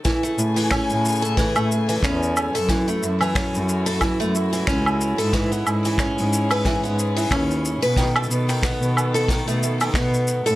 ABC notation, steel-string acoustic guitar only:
X:1
M:4/4
L:1/16
Q:"Swing 16ths" 1/4=91
K:Alyd
V:1 name="Steel-string acoustic guitar"
E, A, z E, C3 A E, A, z E, C3 A | E, A, z E, C3 A E, A, z E, C3 A | E, B, z E, C3 B E, B, z E, C3 B | D, A, z D, B,3 A D, A, z D, B,3 A |]